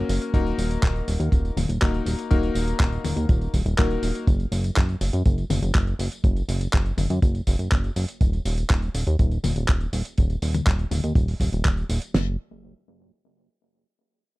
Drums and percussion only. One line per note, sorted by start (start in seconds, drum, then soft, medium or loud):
0.09 open hi-hat loud
0.09 tambourine medium
0.22 closed hi-hat medium
0.22 tambourine soft
0.34 kick loud
0.34 closed hi-hat soft
0.34 tambourine soft
0.46 closed hi-hat soft
0.46 tambourine soft
0.59 open hi-hat loud
0.59 tambourine medium
0.71 closed hi-hat medium
0.71 tambourine soft
0.83 kick loud
0.83 clap loud
0.83 closed hi-hat medium
0.83 tambourine soft
0.96 closed hi-hat soft
0.96 tambourine soft
1.08 open hi-hat loud
1.08 tambourine medium
1.20 closed hi-hat soft
1.20 tambourine soft
1.32 kick loud
1.32 closed hi-hat soft
1.32 tambourine soft
1.45 closed hi-hat soft
1.45 tambourine soft
1.57 open hi-hat loud
1.57 high tom medium
1.57 tambourine medium
1.70 closed hi-hat medium
1.70 tambourine soft
1.82 kick loud
1.82 clap loud
1.82 closed hi-hat soft
1.82 tambourine soft
1.94 closed hi-hat soft
1.94 tambourine soft
2.06 open hi-hat loud
2.06 tambourine medium
2.19 closed hi-hat soft
2.19 tambourine soft
2.31 kick loud
2.31 closed hi-hat soft
2.31 tambourine soft
2.43 closed hi-hat soft
2.43 tambourine soft
2.55 open hi-hat loud
2.55 tambourine medium
2.68 closed hi-hat soft
2.68 tambourine soft
2.80 kick loud
2.80 clap loud
2.80 closed hi-hat medium
2.80 tambourine soft
2.92 closed hi-hat soft
2.92 tambourine soft
3.05 open hi-hat loud
3.05 high tom medium
3.05 tambourine medium
3.17 closed hi-hat medium
3.17 tambourine soft
3.29 kick loud
3.29 closed hi-hat soft
3.29 tambourine soft
3.41 closed hi-hat soft
3.41 tambourine soft
3.54 kick medium
3.54 open hi-hat loud
3.54 tambourine medium
3.66 closed hi-hat soft
3.66 tambourine soft
3.78 kick loud
3.78 clap loud
3.78 closed hi-hat soft
3.78 tambourine soft
3.91 closed hi-hat soft
3.91 tambourine soft
4.03 open hi-hat loud
4.03 tambourine medium
4.15 closed hi-hat soft
4.15 tambourine soft
4.27 kick loud
4.27 closed hi-hat medium
4.27 tambourine soft
4.40 closed hi-hat soft
4.40 tambourine soft
4.52 open hi-hat loud
4.52 tambourine medium
4.64 closed hi-hat soft
4.64 tambourine soft
4.77 kick loud
4.77 clap loud
4.77 closed hi-hat medium
4.77 tambourine soft
4.89 closed hi-hat soft
4.89 tambourine soft
5.01 open hi-hat loud
5.01 tambourine medium
5.13 closed hi-hat medium
5.13 tambourine soft
5.26 kick loud
5.26 closed hi-hat soft
5.26 tambourine soft
5.38 closed hi-hat soft
5.38 tambourine soft
5.50 open hi-hat loud
5.50 high tom medium
5.50 tambourine medium
5.63 closed hi-hat medium
5.63 tambourine soft
5.75 kick loud
5.75 clap loud
5.75 closed hi-hat soft
5.75 tambourine soft
5.87 closed hi-hat soft
5.87 tambourine soft
5.99 open hi-hat loud
5.99 tambourine medium
6.12 closed hi-hat soft
6.12 tambourine soft
6.24 kick loud
6.24 closed hi-hat medium
6.24 tambourine soft
6.36 closed hi-hat soft
6.36 tambourine soft
6.49 open hi-hat loud
6.49 tambourine medium
6.61 closed hi-hat medium
6.61 tambourine soft
6.73 kick loud
6.73 clap loud
6.73 closed hi-hat medium
6.73 tambourine soft
6.86 closed hi-hat soft
6.86 tambourine soft
6.98 open hi-hat loud
6.98 high tom medium
6.98 tambourine medium
7.10 closed hi-hat medium
7.10 tambourine soft
7.22 kick loud
7.22 closed hi-hat medium
7.22 tambourine soft
7.35 closed hi-hat soft
7.35 tambourine soft
7.47 kick medium
7.47 open hi-hat loud
7.47 tambourine medium
7.59 closed hi-hat medium
7.59 tambourine soft
7.72 kick loud
7.72 clap loud
7.72 closed hi-hat medium
7.72 tambourine soft
7.84 closed hi-hat soft
7.84 tambourine soft
7.96 open hi-hat loud
7.96 tambourine medium
8.09 closed hi-hat soft
8.09 tambourine soft
8.21 kick loud
8.21 closed hi-hat medium
8.21 tambourine soft
8.33 closed hi-hat soft
8.33 tambourine soft
8.45 open hi-hat loud
8.45 tambourine medium
8.58 closed hi-hat medium
8.58 tambourine soft
8.70 kick loud
8.70 clap loud
8.70 closed hi-hat medium
8.70 tambourine soft
8.82 closed hi-hat soft
8.82 tambourine soft
8.95 open hi-hat loud
8.95 tambourine medium
9.07 closed hi-hat medium
9.07 tambourine soft
9.19 kick loud
9.19 closed hi-hat medium
9.19 tambourine soft
9.31 closed hi-hat soft
9.31 tambourine soft
9.44 open hi-hat loud
9.44 high tom medium
9.44 tambourine medium
9.56 closed hi-hat medium
9.56 tambourine soft
9.68 kick loud
9.68 clap loud
9.68 closed hi-hat medium
9.68 tambourine soft
9.81 closed hi-hat soft
9.81 tambourine soft
9.93 open hi-hat loud
9.93 tambourine medium
10.05 closed hi-hat medium
10.05 tambourine soft
10.18 kick loud
10.18 closed hi-hat medium
10.18 tambourine soft
10.30 closed hi-hat soft
10.30 tambourine soft
10.42 open hi-hat loud
10.42 tambourine medium
10.54 closed hi-hat medium
10.54 high tom medium
10.54 tambourine soft
10.67 kick loud
10.67 clap loud
10.67 closed hi-hat medium
10.67 tambourine soft
10.79 closed hi-hat soft
10.79 tambourine soft
10.91 open hi-hat loud
10.91 high tom medium
10.91 tambourine medium
11.04 closed hi-hat medium
11.04 tambourine soft
11.15 kick loud
11.15 closed hi-hat medium
11.15 tambourine soft
11.28 open hi-hat medium
11.28 tambourine soft
11.40 kick medium
11.40 open hi-hat loud
11.40 tambourine medium
11.53 closed hi-hat medium
11.53 tambourine soft
11.65 kick loud
11.65 clap loud
11.65 closed hi-hat medium
11.65 tambourine soft
11.77 closed hi-hat soft
11.77 tambourine soft
11.90 open hi-hat loud
11.90 tambourine medium
12.02 closed hi-hat medium
12.02 tambourine soft
12.14 snare loud
12.14 crash medium